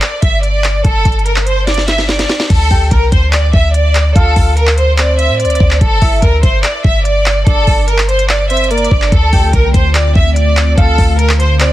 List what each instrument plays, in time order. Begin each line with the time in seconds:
0.02 violin section D5, clap, closed hi-hat
0.22 808-style bass G1, violin section E5, kick, closed hi-hat
0.43 violin section D5, closed hi-hat
0.64 clap, closed hi-hat
0.85 808-style bass G1, violin section A4, kick, closed hi-hat
1.05 808-style bass G1, kick, closed hi-hat
1.12 closed hi-hat
1.19 closed hi-hat
1.26 violin section A#4, closed hi-hat
1.36 clap
1.47 violin section C5, closed hi-hat
1.67 violin section D5, snare, closed hi-hat
1.74 snare, closed hi-hat
1.81 closed hi-hat
1.88 violin section E5, snare, closed hi-hat
1.98 snare
2.09 violin section D5, snare, closed hi-hat
2.19 snare, closed hi-hat
2.29 snare, closed hi-hat
2.40 snare
2.50 808-style bass D2, violin section A4, kick, closed hi-hat, crash
2.71 808-style bass D2, soft synth lead G5, kick, open hi-hat
2.91 808-style bass C2, violin section A#4, kick, closed hi-hat
3.12 808-style bass D2, violin section C5, kick, closed hi-hat
3.33 violin section D5, clap, closed hi-hat
3.53 808-style bass D2, violin section E5, kick
3.74 violin section D5, closed hi-hat
3.95 clap, closed hi-hat
4.16 808-style bass D2, violin section A4, soft synth lead F5, kick, closed hi-hat
4.36 808-style bass D2, kick, open hi-hat
4.57 violin section A#4, closed hi-hat
4.67 clap
4.77 violin section C5, closed hi-hat
4.98 soft synth lead C5, violin section D5, clap, closed hi-hat
5.19 violin section E5, closed hi-hat
5.29 808-style bass A2
5.40 violin section D5, closed hi-hat
5.45 808-style bass D2, closed hi-hat
5.50 closed hi-hat
5.55 closed hi-hat
5.60 808-style bass D2, kick
5.71 clap
5.81 808-style bass G1, violin section A4, kick, closed hi-hat
6.02 808-style bass G1, soft synth lead E5, kick, open hi-hat
6.22 808-style bass D2, violin section A#4, kick, closed hi-hat
6.43 808-style bass G1, violin section C5, kick, closed hi-hat
6.64 violin section D5, clap, closed hi-hat
6.84 808-style bass G1, violin section E5, kick
7.05 violin section D5, closed hi-hat
7.26 clap, closed hi-hat
7.47 808-style bass G1, violin section A4, soft synth lead D5, kick, closed hi-hat
7.67 808-style bass G1, kick, open hi-hat
7.88 violin section A#4, closed hi-hat
7.98 clap
8.09 violin section C5, closed hi-hat
8.19 closed hi-hat
8.29 violin section D5, clap, closed hi-hat
8.50 soft synth lead C5, violin section E5, closed hi-hat
8.57 closed hi-hat
8.64 closed hi-hat
8.71 soft synth lead A#4, violin section D5, closed hi-hat
8.78 closed hi-hat
8.84 closed hi-hat
8.91 808-style bass G1, soft synth lead D5, kick
9.02 clap
9.12 808-style bass D2, ambient pad D3 A3 C4 F4, violin section A4, kick, closed hi-hat
9.33 808-style bass D2, soft synth lead G5, kick, open hi-hat
9.53 808-style bass C2, violin section A#4, kick, closed hi-hat
9.74 808-style bass D2, violin section C5, kick, closed hi-hat
9.95 violin section D5, clap, closed hi-hat
10.15 808-style bass D2, violin section E5, kick
10.36 violin section D5, closed hi-hat
10.57 clap, closed hi-hat
10.78 808-style bass D2, violin section A4, soft synth lead F5, kick, closed hi-hat
10.98 808-style bass D2, kick, open hi-hat
11.19 violin section A#4, closed hi-hat
11.29 clap
11.39 violin section C5, closed hi-hat
11.60 soft synth lead C5, violin section D5, clap, closed hi-hat